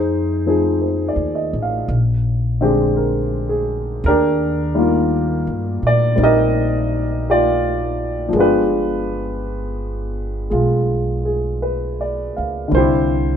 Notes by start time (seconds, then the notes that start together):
Already playing: F2 D#4 G#4 C5
0.46 F3 C4 D#4 G#4
0.82 C5
1.08 D5
1.16 D#2
1.35 D#5
1.53 A1
1.62 F5
1.88 A#1
2.61 D3 G#3 C4 G4
2.96 A#4
3.49 G#4
4.04 D#2 A#4
4.08 D4 G4
4.74 D#3 G3 A#3
4.79 F4
5.47 G2
5.83 A#2
5.87 D5
6.16 A#1 G3 C4 D#4
6.23 G4 A#4 D#5
7.30 F4 G4 D5
8.29 F3
8.33 G1 G#3 B3
8.38 D4 F4 G4 B4
10.50 B1 G#3 F4
11.25 G#4
11.62 B4
12.01 D5
12.36 C#2 F5
12.68 C2 D3 G3
12.75 C4 E4 G4 C5